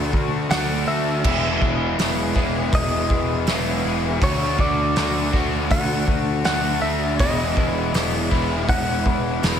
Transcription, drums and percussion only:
0.13 kick medium
0.51 snare loud
0.51 open hi-hat medium
1.24 kick loud
1.24 crash loud
1.62 kick medium
1.99 snare loud
1.99 open hi-hat medium
2.36 kick medium
2.73 kick loud
2.73 open hi-hat medium
3.10 kick medium
3.47 snare loud
3.47 open hi-hat medium
4.22 kick loud
4.22 open hi-hat medium
4.59 kick medium
4.96 snare loud
4.96 open hi-hat medium
5.33 kick medium
5.71 kick loud
5.71 open hi-hat medium
6.08 kick medium
6.45 snare loud
6.45 open hi-hat medium
7.19 kick loud
7.19 open hi-hat medium
7.57 kick medium
7.94 snare loud
7.94 open hi-hat medium
8.31 kick medium
8.69 kick loud
8.69 open hi-hat medium
9.06 kick medium
9.43 snare loud
9.43 open hi-hat medium

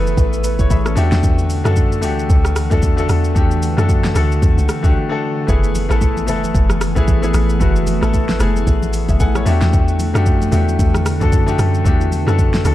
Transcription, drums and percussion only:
0.07 shaker medium
0.17 kick loud
0.17 shaker medium
0.33 shaker medium
0.44 open hi-hat medium
0.44 shaker loud
0.59 kick loud
0.59 shaker medium
0.70 kick loud
0.70 shaker medium
0.86 cross-stick loud
0.86 shaker medium
0.97 open hi-hat medium
0.97 shaker medium
1.12 snare medium
1.12 shaker medium
1.23 kick loud
1.23 shaker medium
1.39 shaker medium
1.50 open hi-hat medium
1.50 shaker medium
1.65 cross-stick medium
1.65 shaker medium
1.76 kick loud
1.76 shaker medium
1.92 shaker medium
2.03 open hi-hat medium
2.03 shaker loud
2.19 shaker medium
2.30 kick loud
2.30 shaker medium
2.45 cross-stick loud
2.45 shaker medium
2.56 cross-stick loud
2.56 open hi-hat medium
2.56 shaker loud
2.71 kick medium
2.71 shaker medium
2.82 kick loud
2.82 shaker medium
2.98 shaker medium
3.09 cross-stick medium
3.09 open hi-hat medium
3.09 shaker medium
3.24 shaker medium
3.36 kick loud
3.36 shaker medium
3.51 shaker medium
3.62 open hi-hat medium
3.62 shaker medium
3.78 cross-stick medium
3.78 shaker medium
3.89 kick loud
3.89 shaker medium
4.04 snare medium
4.04 shaker medium
4.15 cross-stick medium
4.15 open hi-hat medium
4.15 shaker loud
4.32 shaker medium
4.42 kick loud
4.42 shaker medium
4.58 shaker medium
4.69 cross-stick loud
4.69 open hi-hat medium
4.69 shaker loud
4.84 kick loud
4.84 shaker medium
5.48 kick loud
5.48 low conga medium
5.48 shaker medium
5.64 shaker medium
5.75 open hi-hat medium
5.75 high conga medium
5.75 shaker medium
5.91 cross-stick medium
5.91 shaker medium
6.01 kick loud
6.01 low conga medium
6.01 shaker medium
6.17 high conga medium
6.17 shaker medium
6.28 open hi-hat medium
6.28 low conga medium
6.28 shaker loud
6.43 high conga medium
6.43 shaker medium
6.54 kick loud
6.54 low conga medium
6.54 shaker medium
6.70 cross-stick loud
6.70 high conga medium
6.70 shaker medium
6.81 cross-stick loud
6.81 open hi-hat medium
6.81 shaker loud
6.96 kick medium
6.96 high conga medium
6.96 shaker medium
7.08 kick loud
7.08 shaker medium
7.23 high conga medium
7.23 shaker medium
7.34 cross-stick loud
7.34 open hi-hat medium
7.34 high conga medium
7.34 shaker medium
7.49 shaker medium
7.61 kick loud
7.61 low conga medium
7.61 shaker medium
7.76 shaker medium
7.87 open hi-hat medium
7.87 high conga medium
7.87 shaker medium
8.03 cross-stick medium
8.03 shaker medium
8.14 kick loud
8.14 low conga medium
8.14 shaker medium
8.29 snare medium
8.29 high conga medium
8.29 shaker medium
8.40 cross-stick loud
8.40 open hi-hat medium
8.40 low conga medium
8.40 shaker loud
8.56 high conga medium
8.56 shaker medium
8.67 kick loud
8.67 low conga medium
8.67 shaker medium
8.82 high conga medium
8.82 shaker medium
8.93 open hi-hat medium
8.93 shaker loud
9.09 kick medium
9.09 high conga medium
9.09 shaker medium
9.20 kick loud
9.20 shaker medium
9.35 cross-stick loud
9.35 high conga medium
9.35 shaker medium
9.46 open hi-hat medium
9.46 high conga medium
9.46 shaker medium
9.62 snare medium
9.62 shaker medium
9.73 kick loud
9.73 low conga medium
9.73 shaker medium
9.88 shaker medium
9.99 open hi-hat medium
9.99 high conga medium
9.99 shaker medium
10.15 cross-stick loud
10.15 shaker medium
10.26 kick loud
10.26 low conga medium
10.26 shaker medium
10.42 high conga medium
10.42 shaker medium
10.52 open hi-hat medium
10.52 low conga medium
10.52 shaker loud
10.68 high conga medium
10.68 shaker medium
10.79 kick loud
10.79 low conga medium
10.79 shaker medium
10.94 cross-stick loud
10.94 high conga medium
10.94 shaker medium
11.06 cross-stick loud
11.06 open hi-hat medium
11.06 shaker loud
11.21 kick loud
11.21 high conga medium
11.21 shaker medium
11.32 kick loud
11.32 shaker medium
11.48 high conga medium
11.48 shaker medium
11.59 cross-stick medium
11.59 open hi-hat medium
11.59 high conga medium
11.59 shaker loud
11.74 shaker medium
11.86 kick loud
11.86 low conga medium
11.86 shaker medium
12.01 shaker medium
12.12 open hi-hat medium
12.12 high conga medium
12.12 shaker medium
12.28 cross-stick medium
12.28 shaker medium
12.39 kick loud
12.39 low conga medium
12.39 shaker medium
12.54 snare medium
12.54 high conga medium
12.54 shaker medium
12.65 cross-stick medium
12.65 open hi-hat medium
12.65 low conga medium
12.65 shaker loud

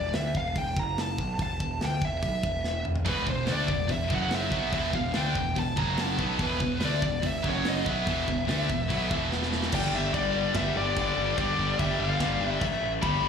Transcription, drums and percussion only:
0.14 snare loud
0.14 open hi-hat soft
0.35 kick medium
0.56 kick medium
0.56 open hi-hat soft
0.77 kick loud
0.98 snare medium
0.98 open hi-hat soft
1.18 kick medium
1.39 kick medium
1.39 open hi-hat soft
1.60 kick medium
1.81 snare loud
1.81 open hi-hat soft
2.02 kick medium
2.23 kick medium
2.23 open hi-hat soft
2.43 kick loud
2.64 snare medium
2.85 mid tom medium
2.96 floor tom medium
3.06 kick medium
3.06 open hi-hat soft
3.27 kick medium
3.47 snare loud
3.47 open hi-hat soft
3.68 kick medium
3.89 kick medium
3.89 open hi-hat soft
4.10 kick loud
4.31 snare loud
4.31 open hi-hat soft
4.52 kick medium
4.73 kick medium
4.73 open hi-hat soft
4.93 kick medium
5.14 snare loud
5.14 open hi-hat soft
5.35 kick medium
5.56 kick medium
5.56 open hi-hat soft
5.77 kick loud
5.98 snare loud
5.98 open hi-hat soft
6.19 kick medium
6.39 kick medium
6.39 open hi-hat soft
6.60 kick medium
6.80 snare loud
6.80 open hi-hat soft
7.02 kick medium
7.23 kick medium
7.23 open hi-hat soft
7.44 kick loud
7.65 snare loud
7.65 open hi-hat soft
7.86 kick loud
8.07 kick medium
8.07 open hi-hat soft
8.28 kick medium
8.49 snare loud
8.49 open hi-hat soft
8.70 kick medium
8.90 kick medium
8.90 open hi-hat soft
9.11 kick loud
9.32 snare medium
9.43 snare medium
9.53 snare medium
9.62 snare medium
9.72 kick loud
9.72 crash loud
9.72 crash medium
10.14 kick medium
10.14 crash medium
10.54 kick loud
10.54 snare loud
10.54 crash medium
10.96 kick medium
10.96 crash medium
11.38 kick loud
11.38 crash medium
11.79 kick medium
11.79 crash medium
12.20 kick loud
12.20 snare loud
12.20 crash medium
12.61 kick medium
12.61 crash medium
13.03 kick loud
13.03 crash medium

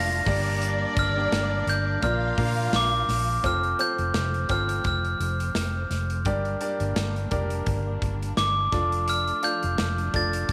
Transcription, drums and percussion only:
0.26 kick loud
0.26 snare soft
0.26 hi-hat pedal medium
0.26 open hi-hat medium
0.62 hi-hat pedal medium
0.62 open hi-hat medium
0.97 kick loud
0.97 hi-hat pedal medium
0.97 open hi-hat medium
1.32 snare loud
1.32 hi-hat pedal medium
1.32 open hi-hat loud
1.68 hi-hat pedal medium
1.68 open hi-hat medium
2.02 kick medium
2.02 hi-hat pedal medium
2.02 open hi-hat medium
2.38 kick medium
2.38 hi-hat pedal medium
2.38 open hi-hat medium
2.73 snare loud
2.73 hi-hat pedal medium
2.73 open hi-hat loud
3.09 snare soft
3.09 hi-hat pedal medium
3.09 open hi-hat medium
3.44 kick medium
3.44 closed hi-hat medium
3.63 closed hi-hat soft
3.79 closed hi-hat medium
3.98 closed hi-hat soft
4.14 snare loud
4.14 closed hi-hat medium
4.34 closed hi-hat soft
4.49 kick medium
4.49 closed hi-hat medium
4.69 closed hi-hat medium
4.84 kick medium
4.84 closed hi-hat medium
5.05 closed hi-hat soft
5.21 closed hi-hat medium
5.40 closed hi-hat soft
5.55 snare loud
5.55 closed hi-hat loud
5.91 snare soft
5.91 closed hi-hat medium
6.10 closed hi-hat soft
6.25 kick medium
6.25 closed hi-hat medium
6.45 closed hi-hat soft
6.61 closed hi-hat medium
6.80 closed hi-hat soft
6.96 snare loud
6.96 closed hi-hat loud
7.16 closed hi-hat soft
7.31 kick medium
7.31 closed hi-hat medium
7.50 closed hi-hat medium
7.66 kick medium
7.66 closed hi-hat medium
8.02 kick medium
8.02 closed hi-hat medium
8.22 closed hi-hat medium
8.37 snare medium
8.37 closed hi-hat medium
8.72 kick medium
8.72 snare soft
8.72 closed hi-hat medium
8.92 closed hi-hat soft
9.08 closed hi-hat medium
9.27 closed hi-hat soft
9.43 closed hi-hat medium
9.63 closed hi-hat soft
9.78 snare loud
9.78 closed hi-hat loud
9.98 closed hi-hat soft
10.14 kick medium
10.14 closed hi-hat medium
10.33 closed hi-hat medium
10.49 kick medium
10.49 closed hi-hat medium

